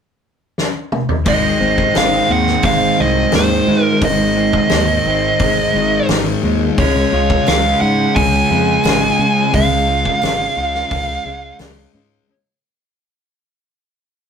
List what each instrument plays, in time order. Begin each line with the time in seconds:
0.58 snare
0.92 mid tom
1.09 floor tom
1.25 fingered electric bass G#1, distorted electric guitar G#2 D#3 G#3, overdriven electric guitar C4 D#4, lead electric guitar D#5, kick, open hi-hat
1.59 fingered electric bass G#1, distorted electric guitar D#3 G#3, clean electric guitar C4
1.78 kick
1.94 fingered electric bass G#1, distorted electric guitar G#2 D#3 G#3, lead electric guitar F5, snare, open hi-hat
2.29 fingered electric bass D#2, clean electric guitar C4, lead electric guitar F#5
2.47 snare
2.63 fingered electric bass G#1, clean electric guitar G#3, lead electric guitar F5, kick, open hi-hat
2.98 fingered electric bass C2, distorted electric guitar D#3 G#3, lead electric guitar D#5
3.32 fingered electric bass D#2, distorted electric guitar G#2 D#3 G#3, lead electric guitar C5, snare, open hi-hat
3.67 fingered electric bass G#2, distorted electric guitar D#3 G#3
3.83 lead electric guitar A#4
4.01 fingered electric bass G#1, distorted electric guitar G#2 D#3 G#3, lead electric guitar D#5, kick, open hi-hat
4.36 distorted electric guitar D#3 G#3, clean electric guitar C4
4.53 kick
4.69 fingered electric bass D#2, distorted electric guitar G#2 D#3 G#3, snare, open hi-hat
5.06 fingered electric bass G#1, clean electric guitar C4
5.39 fingered electric bass G#1, clean electric guitar G#3, kick, open hi-hat
5.73 fingered electric bass G#1, distorted electric guitar D#3 G#3
6.09 fingered electric bass G#1, distorted electric guitar G#2 D#3 G#3, snare, open hi-hat
6.43 fingered electric bass D#2, distorted electric guitar D#3 G#3
6.78 fingered electric bass C#2, distorted electric guitar C#3 G#3 C#4, overdriven electric guitar F4, lead electric guitar C#5, kick, open hi-hat
7.12 fingered electric bass C#2, distorted electric guitar G#3 C#4, clean electric guitar F4
7.30 kick
7.46 fingered electric bass C#2, distorted electric guitar C#3 G#3 C#4, lead electric guitar F5, snare, open hi-hat, tambourine
7.81 fingered electric bass G#2, lead electric guitar F#5
8.16 fingered electric bass C#2, lead electric guitar G#5, kick, open hi-hat
8.51 fingered electric bass F2, distorted electric guitar G#3 C#4
8.84 fingered electric bass G#1, distorted electric guitar C#3 G#3 C#4, snare, open hi-hat, tambourine
9.19 fingered electric bass C#3, distorted electric guitar G#3 C#4
9.53 fingered electric bass C#2, distorted electric guitar C#3 G#3 C#4, lead electric guitar F5, kick, open hi-hat
9.88 distorted electric guitar G#3 C#4, clean electric guitar F4
10.05 kick
10.21 fingered electric bass G#1, distorted electric guitar C#3 G#3 C#4, snare, open hi-hat, tambourine
10.57 fingered electric bass C#2, clean electric guitar F4
10.75 snare
10.91 fingered electric bass C#2, kick, open hi-hat
11.25 fingered electric bass C#2, distorted electric guitar G#3 C#4
11.59 fingered electric bass C#2, distorted electric guitar C#3 G#3 C#4, snare, open hi-hat, tambourine
11.93 fingered electric bass G#2, distorted electric guitar G#3 C#4